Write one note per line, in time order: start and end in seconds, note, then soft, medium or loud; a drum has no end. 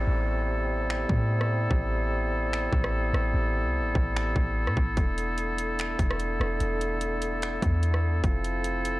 0.00 4.80 C3 medium
0.00 4.80 G3 medium
0.00 8.20 B3 medium
0.00 8.20 E4 medium
0.00 8.20 A4 medium
0.00 downlifter medium
0.07 1.05 A1 loud
0.90 finger snap loud
1.09 1.68 A2 loud
1.09 kick medium
1.41 cross-stick medium
1.71 2.69 A1 loud
1.71 kick loud
2.53 finger snap loud
2.73 3.12 A1 loud
2.73 kick medium
2.84 cross-stick loud
3.13 3.33 A1 loud
3.13 cross-stick loud
3.34 3.66 A1 loud
3.64 3.81 C2 loud
3.80 3.94 A1 medium
3.95 4.34 A1 loud
3.95 kick loud
4.17 finger snap loud
4.36 4.68 A1 loud
4.36 kick medium
4.67 4.76 A2 medium
4.67 cross-stick medium
4.77 4.96 A1 loud
4.77 kick medium
4.97 5.95 E1 loud
4.97 8.20 D3 medium
4.97 9.00 A3 medium
4.97 kick loud
4.97 closed hi-hat medium
5.18 closed hi-hat medium
5.38 closed hi-hat medium
5.58 closed hi-hat medium
5.79 finger snap loud
5.79 closed hi-hat medium
5.99 6.38 E1 loud
5.99 kick loud
5.99 closed hi-hat medium
6.11 cross-stick loud
6.20 closed hi-hat medium
6.40 6.60 E1 loud
6.40 cross-stick loud
6.60 7.58 E1 loud
6.60 closed hi-hat medium
6.81 closed hi-hat medium
7.01 closed hi-hat medium
7.22 closed hi-hat medium
7.42 finger snap loud
7.42 closed hi-hat medium
7.62 8.21 E2 loud
7.62 kick loud
7.62 closed hi-hat medium
7.83 closed hi-hat medium
7.94 cross-stick medium
8.24 9.00 F1 loud
8.24 9.00 F3 medium
8.24 9.00 C4 medium
8.24 9.00 E4 medium
8.24 9.00 A4 medium
8.24 kick loud
8.24 closed hi-hat medium
8.44 closed hi-hat medium
8.64 closed hi-hat medium
8.85 closed hi-hat medium